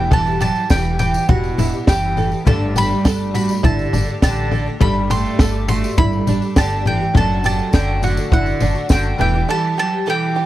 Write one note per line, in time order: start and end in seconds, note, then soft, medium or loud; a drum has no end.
0.00 0.48 E1 loud
0.00 2.13 E2 medium
0.00 0.11 E3 soft
0.00 2.13 E3 medium
0.00 0.12 G3 soft
0.00 2.12 G3 medium
0.00 0.12 B3 medium
0.00 2.12 B3 medium
0.00 2.13 E4 medium
0.00 0.11 G4 medium
0.00 2.13 B4 medium
0.00 2.14 E5 medium
0.00 0.13 G5 medium
0.11 0.41 E2 medium
0.11 0.41 B2 medium
0.11 0.39 E3 medium
0.11 0.40 E3 medium
0.11 0.41 G3 medium
0.11 0.41 B3 medium
0.11 0.42 G4 medium
0.11 0.40 A4 medium
0.11 0.40 A5 medium
0.11 kick loud
0.11 floor tom loud
0.11 tambourine soft
0.27 tambourine soft
0.40 0.71 E3 medium
0.40 0.68 F#3 medium
0.40 0.71 G3 medium
0.40 0.71 B3 medium
0.40 0.70 G4 medium
0.40 0.71 G4 medium
0.40 0.70 A5 loud
0.40 floor tom medium
0.40 tambourine medium
0.55 tambourine soft
0.70 1.15 E1 medium
0.70 1.00 E2 medium
0.70 1.00 B2 medium
0.70 0.98 E3 medium
0.70 0.99 E3 medium
0.70 0.99 G3 medium
0.70 1.00 B3 medium
0.70 1.01 G4 medium
0.70 0.99 A4 medium
0.70 0.98 G5 loud
0.70 kick loud
0.70 snare loud
0.70 tambourine medium
0.85 tambourine soft
0.99 1.27 E3 medium
0.99 1.15 E3 medium
0.99 1.14 G3 medium
0.99 1.14 B3 medium
0.99 1.29 G4 medium
0.99 1.13 G4 medium
0.99 1.28 G5 medium
0.99 floor tom medium
0.99 tambourine medium
1.14 1.56 E3 soft
1.14 1.58 G3 soft
1.14 1.58 B3 soft
1.14 1.58 G4 medium
1.14 tambourine medium
1.29 1.51 E1 medium
1.29 1.84 B2 medium
1.29 1.58 F#4 loud
1.29 1.84 F#5 medium
1.29 kick loud
1.29 floor tom loud
1.44 tambourine soft
1.57 1.69 E1 medium
1.57 1.73 E3 medium
1.57 1.73 G3 medium
1.57 1.72 B3 medium
1.57 1.88 E4 medium
1.57 1.71 G4 medium
1.57 floor tom medium
1.57 tambourine medium
1.72 1.87 E3 soft
1.72 1.87 G3 soft
1.72 1.87 B3 soft
1.72 1.87 G4 soft
1.72 tambourine soft
1.87 2.32 F#1 medium
1.87 2.17 E2 medium
1.87 2.17 B2 medium
1.87 2.43 E3 medium
1.87 2.15 E3 medium
1.87 2.17 G3 medium
1.87 2.17 B3 loud
1.87 2.17 G4 medium
1.87 2.47 G5 loud
1.87 kick loud
1.87 snare loud
1.87 tambourine loud
2.16 2.31 E3 medium
2.16 2.31 G3 medium
2.16 2.30 B3 medium
2.16 2.30 G4 medium
2.16 2.46 A4 medium
2.16 floor tom medium
2.16 tambourine soft
2.31 2.45 E3 soft
2.31 2.44 G3 soft
2.31 2.46 B3 medium
2.31 2.46 G4 medium
2.31 tambourine soft
2.45 4.77 G1 medium
2.45 2.91 G1 loud
2.45 4.77 G2 medium
2.45 2.74 D3 medium
2.45 4.76 G3 medium
2.45 2.74 G3 medium
2.45 4.76 A3 medium
2.45 2.75 A3 medium
2.45 4.77 D4 medium
2.45 2.76 D4 medium
2.45 2.76 G4 medium
2.45 2.76 A4 medium
2.45 4.77 A4 medium
2.45 4.78 D5 medium
2.45 2.77 A5 loud
2.45 kick loud
2.45 floor tom loud
2.45 tambourine soft
2.76 3.03 G3 medium
2.76 3.31 G3 medium
2.76 3.04 A3 medium
2.76 3.04 D4 medium
2.76 3.05 G4 medium
2.76 3.34 B5 loud
2.76 floor tom medium
2.76 tambourine medium
2.90 tambourine soft
3.04 3.49 G1 medium
3.04 3.33 G3 medium
3.04 3.34 A3 medium
3.04 3.34 D4 medium
3.04 3.35 G4 medium
3.04 3.34 A4 medium
3.04 kick loud
3.04 snare loud
3.04 tambourine loud
3.34 3.49 G3 medium
3.34 3.62 G3 medium
3.34 3.50 A3 medium
3.34 3.49 D4 medium
3.34 3.63 F#4 medium
3.34 3.48 G4 medium
3.34 3.64 B5 medium
3.34 floor tom medium
3.34 tambourine medium
3.49 3.94 A3 soft
3.49 3.94 D4 soft
3.49 3.93 G4 medium
3.49 tambourine medium
3.63 3.86 G1 medium
3.63 4.19 D3 medium
3.63 3.92 E4 medium
3.63 4.19 A5 medium
3.63 kick loud
3.63 floor tom loud
3.63 tambourine soft
3.79 tambourine soft
3.93 4.04 G1 medium
3.93 4.08 G3 medium
3.93 4.09 A3 medium
3.93 4.22 D4 medium
3.93 4.08 D4 medium
3.93 4.07 G4 medium
3.93 floor tom medium
3.93 tambourine medium
4.08 4.23 A3 soft
4.08 4.23 D4 medium
4.08 4.22 G4 medium
4.08 tambourine soft
4.22 4.67 A1 medium
4.22 4.77 D3 medium
4.22 4.51 G3 medium
4.22 4.53 A3 medium
4.22 4.53 D4 loud
4.22 4.51 G4 medium
4.22 4.53 G4 loud
4.22 4.81 A5 loud
4.22 kick loud
4.22 snare loud
4.22 tambourine loud
4.37 tambourine soft
4.51 4.67 G3 medium
4.51 4.67 A3 medium
4.51 4.66 D4 medium
4.51 4.65 G4 medium
4.51 4.79 A4 medium
4.51 floor tom medium
4.51 tambourine soft
4.66 4.81 A3 soft
4.66 4.81 D4 soft
4.66 4.81 G4 medium
4.80 5.25 G1 medium
4.80 7.11 G1 medium
4.80 7.11 G2 medium
4.80 7.10 G3 medium
4.80 5.09 G3 medium
4.80 7.11 A3 medium
4.80 5.09 A3 medium
4.80 7.11 D4 medium
4.80 5.10 D4 medium
4.80 5.11 G4 medium
4.80 5.09 A4 medium
4.80 7.12 A4 medium
4.80 7.12 D5 medium
4.80 5.10 B5 loud
4.80 kick loud
4.80 floor tom loud
4.80 tambourine soft
5.10 5.38 G3 medium
5.10 5.39 A3 medium
5.10 5.65 A3 medium
5.10 5.39 D4 medium
5.10 5.39 G4 medium
5.10 5.40 G4 medium
5.10 5.67 C6 loud
5.10 floor tom loud
5.10 tambourine medium
5.26 tambourine soft
5.39 5.83 G1 medium
5.39 5.67 G3 medium
5.39 5.68 A3 medium
5.39 5.69 D4 medium
5.39 5.69 G4 medium
5.39 5.68 A4 medium
5.39 kick loud
5.39 snare loud
5.39 tambourine loud
5.68 5.83 G3 medium
5.68 5.83 A3 medium
5.68 5.97 A3 medium
5.68 5.83 D4 medium
5.68 5.98 F#4 medium
5.68 5.82 G4 medium
5.68 5.98 C6 loud
5.68 floor tom medium
5.68 tambourine medium
5.83 6.27 A3 soft
5.83 6.28 D4 soft
5.83 6.27 G4 medium
5.83 tambourine medium
5.98 6.20 G1 loud
5.98 6.53 G3 loud
5.98 6.27 E4 medium
5.98 6.57 B5 loud
5.98 kick loud
5.98 floor tom loud
6.13 tambourine soft
6.27 6.39 G1 medium
6.27 6.42 G3 medium
6.27 6.42 A3 medium
6.27 6.56 D4 medium
6.27 6.42 D4 medium
6.27 6.41 G4 medium
6.27 floor tom loud
6.27 tambourine medium
6.42 6.55 A3 soft
6.42 6.56 D4 soft
6.42 6.57 G4 medium
6.42 tambourine soft
6.56 7.01 G1 loud
6.56 6.84 D3 medium
6.56 6.85 G3 medium
6.56 6.86 A3 medium
6.56 6.86 D4 loud
6.56 6.86 G4 loud
6.56 6.86 G4 medium
6.56 6.87 A5 medium
6.56 kick loud
6.56 snare loud
6.56 tambourine medium
6.71 tambourine soft
6.86 7.14 E3 medium
6.86 7.01 G3 medium
6.86 7.01 A3 medium
6.86 7.01 D4 medium
6.86 6.99 G4 medium
6.86 7.15 A4 medium
6.86 7.14 G5 loud
6.86 floor tom medium
6.86 tambourine soft
7.01 7.14 A3 soft
7.01 7.15 D4 medium
7.01 7.15 G4 medium
7.14 7.59 F#1 medium
7.14 9.16 F#1 medium
7.14 9.16 F#2 medium
7.14 9.15 F#3 medium
7.14 7.42 F#3 medium
7.14 7.43 F#3 medium
7.14 9.15 A3 medium
7.14 7.43 A3 medium
7.14 9.16 D4 medium
7.14 7.44 D4 medium
7.14 7.44 F#4 medium
7.14 7.44 A4 loud
7.14 9.16 A4 medium
7.14 9.17 D5 medium
7.14 7.45 A5 loud
7.14 kick loud
7.14 floor tom loud
7.14 tambourine soft
7.43 7.71 F#3 medium
7.43 7.73 F#3 medium
7.43 7.71 A3 medium
7.43 7.72 D4 medium
7.43 7.73 F#4 medium
7.43 7.73 G4 medium
7.43 7.74 A5 loud
7.43 floor tom medium
7.43 tambourine medium
7.59 tambourine soft
7.72 8.18 F#1 medium
7.72 8.01 D3 medium
7.72 8.01 F#3 medium
7.72 8.02 A3 medium
7.72 8.02 D4 medium
7.72 8.03 F#4 medium
7.72 8.03 A4 medium
7.72 8.03 G5 loud
7.72 kick loud
7.72 snare loud
7.72 tambourine medium
8.02 8.31 D3 medium
8.02 8.17 F#3 medium
8.02 8.17 A3 medium
8.02 8.17 D4 medium
8.02 8.16 F#4 medium
8.02 8.32 F#4 medium
8.02 8.32 F#5 medium
8.02 floor tom medium
8.02 tambourine medium
8.17 8.60 A3 soft
8.17 8.61 D4 medium
8.17 8.61 F#4 medium
8.17 tambourine medium
8.32 8.54 F#1 medium
8.32 8.87 D3 medium
8.32 8.61 E4 medium
8.32 8.91 F#5 loud
8.32 kick loud
8.32 floor tom loud
8.32 tambourine soft
8.46 tambourine soft
8.60 8.72 F#1 medium
8.60 8.76 F#3 medium
8.60 8.76 A3 medium
8.60 8.90 D4 medium
8.60 8.75 D4 medium
8.60 8.74 F#4 medium
8.60 floor tom medium
8.60 tambourine medium
8.75 8.89 A3 soft
8.75 8.90 D4 soft
8.75 8.90 F#4 medium
8.75 tambourine soft
8.89 9.12 F#1 loud
8.89 9.18 D3 medium
8.89 9.19 F#3 medium
8.89 9.20 A3 medium
8.89 9.20 D4 loud
8.89 9.19 F#4 medium
8.89 9.20 F#4 loud
8.89 9.20 G5 medium
8.89 kick loud
8.89 snare loud
8.89 tambourine loud
9.04 tambourine soft
9.17 9.41 E1 loud
9.17 10.46 E2 medium
9.17 10.46 E3 medium
9.17 9.34 E3 medium
9.17 9.47 E3 medium
9.17 10.46 G3 medium
9.17 9.34 G3 medium
9.17 10.46 B3 medium
9.17 9.33 B3 medium
9.17 10.46 E4 medium
9.17 9.48 G4 medium
9.17 10.46 B4 medium
9.17 10.46 E5 medium
9.17 9.50 G5 medium
9.17 floor tom medium
9.17 tambourine soft
9.22 9.33 G4 medium
9.34 9.48 E3 soft
9.34 9.48 G3 soft
9.34 9.48 B3 medium
9.34 9.48 G4 soft
9.48 9.78 E2 medium
9.48 9.78 B2 medium
9.48 9.76 E3 medium
9.48 9.77 E3 medium
9.48 9.77 G3 medium
9.48 9.77 B3 medium
9.48 9.78 G4 medium
9.48 9.77 A4 loud
9.48 9.78 A5 loud
9.77 10.05 E3 medium
9.77 10.06 F#3 medium
9.77 10.05 G3 medium
9.77 10.06 B3 medium
9.77 10.07 G4 medium
9.77 10.06 G4 medium
9.77 10.09 A5 loud
10.06 10.36 E2 medium
10.06 10.36 B2 medium
10.06 10.34 E3 medium
10.06 10.46 E3 medium
10.06 10.34 G3 medium
10.06 10.35 B3 medium
10.06 10.36 G4 loud
10.06 10.36 A4 medium
10.06 10.46 G5 loud
10.35 10.46 E3 medium
10.35 10.46 G3 medium
10.35 10.46 B3 medium
10.35 10.46 G4 medium